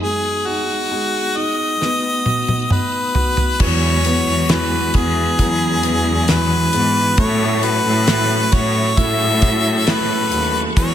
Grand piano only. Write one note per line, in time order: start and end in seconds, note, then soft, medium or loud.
0.01 0.90 G#3 medium
0.47 1.35 D#4 soft
0.91 1.78 G#3 soft
1.36 1.80 D#4 soft
1.81 2.70 B3 soft
2.26 3.14 F#4 soft
2.71 3.58 B3 soft
3.16 3.59 F#4 soft
3.61 4.48 E3 medium
4.06 4.94 B3 medium
4.50 5.38 E3 medium
4.95 5.82 B3 medium
5.39 6.27 E3 medium
5.84 6.73 B3 soft
6.29 7.16 E3 medium
6.74 7.18 B3 soft
7.18 9.85 A3 medium
7.63 8.51 F#4 medium
8.07 8.96 E4 medium
8.52 9.41 F#4 soft
8.97 10.73 E4 soft
9.42 10.30 F#4 medium
9.87 10.74 A3 medium
10.32 10.75 F#4 medium
10.77 10.94 E3 medium